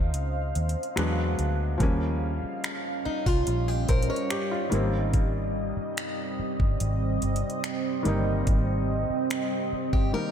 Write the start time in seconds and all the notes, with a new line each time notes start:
Already playing: D#2 C#3 F3 G#3 C4 D#4 C5 D#5 F5
0.14 C#2, closed hi-hat
0.55 D#2, closed hi-hat
0.69 closed hi-hat
0.83 closed hi-hat
0.96 E2 F#3 G#3 B3 D4, finger snap, closed hi-hat
1.39 D2, closed hi-hat
1.78 D#2 F3 G3 A#3 C#4 D#5 F5, kick, closed hi-hat
1.83 C#4
2.43 muted fingered electric bass stroke
2.64 finger snap, closed hi-hat
3.05 D#4, muted fingered electric bass stroke
3.26 C2 F4, kick
3.47 A#1, closed hi-hat
3.68 G4
3.88 A#1 A#4 C5, kick, closed hi-hat
4.02 closed hi-hat
4.10 A#4 C#5
4.16 closed hi-hat
4.30 G4, finger snap, closed hi-hat
4.51 F4
4.70 G#1 D#3 G3 A#3 C4, closed hi-hat
4.75 C4
5.13 kick, closed hi-hat
5.77 muted fingered electric bass stroke
5.97 finger snap, closed hi-hat
6.39 muted fingered electric bass stroke
6.60 G1, kick
6.80 G#1, closed hi-hat
7.22 G1, closed hi-hat
7.36 closed hi-hat
7.50 closed hi-hat
7.64 finger snap, closed hi-hat
8.03 G1 D#3 G3 A#3, closed hi-hat
8.08 D#4
8.47 G#1, kick, closed hi-hat
9.10 muted fingered electric bass stroke
9.30 finger snap, closed hi-hat
9.72 muted fingered electric bass stroke
9.93 G1 G4, kick
10.13 D#3 G3 A#3 D#4 A#4